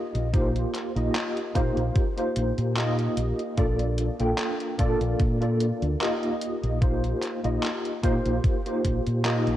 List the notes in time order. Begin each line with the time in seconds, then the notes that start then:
Already playing: A#3 D#4 F4 G4 D#5
0.15 A#1, closed hi-hat
0.33 A#3 D#4 F4 G4 C5, kick, closed hi-hat
0.56 closed hi-hat
0.74 clap, closed hi-hat
0.95 A#1 A#3 D#4 F4 G4 D#5, closed hi-hat
1.15 clap, closed hi-hat
1.37 closed hi-hat
1.54 A#2 A#3 D#4 F4 G4 C5, kick, closed hi-hat
1.77 A#1, closed hi-hat
1.96 kick, closed hi-hat
2.17 A#3 D#4 F4 G4 C5, closed hi-hat
2.36 A#1, closed hi-hat
2.58 A#2, closed hi-hat
2.76 A#3 D#4 F4 G4 D#5, clap, closed hi-hat
2.99 closed hi-hat
3.17 A#1, closed hi-hat
3.39 closed hi-hat
3.57 A#1 A#3 D4 F4 A4 D5, kick, closed hi-hat
3.79 closed hi-hat
3.98 closed hi-hat
4.19 A#1 A#3 D4 F4 A4 G5, closed hi-hat
4.38 clap, closed hi-hat
4.60 closed hi-hat
4.78 A#2 A#3 D4 F4 A4 D5, kick, closed hi-hat
5.01 A#1, closed hi-hat
5.20 A#2, kick, closed hi-hat
5.41 A#3 D4 F4 A4 D5, closed hi-hat
5.60 closed hi-hat
5.82 D2, closed hi-hat
6.00 A#3 D#4 F4 G4 D#5, clap, closed hi-hat
6.23 closed hi-hat
6.42 closed hi-hat
6.63 A#1, closed hi-hat
6.81 A#3 D#4 F4 G4 C5, kick, closed hi-hat
7.04 closed hi-hat
7.22 clap, closed hi-hat
7.43 A#1 A#3 D#4 F4 G4 D#5, closed hi-hat
7.63 clap, closed hi-hat
7.85 closed hi-hat
8.03 A#2 A#3 D#4 F4 G4 C5, kick, closed hi-hat
8.26 A#1, closed hi-hat
8.44 kick, closed hi-hat
8.66 A#3 D#4 F4 G4 C5, closed hi-hat
8.85 A#1, kick, closed hi-hat
9.07 A#2, closed hi-hat
9.25 A#3 D#4 F4 G4 D#5, clap, closed hi-hat
9.47 A#1, closed hi-hat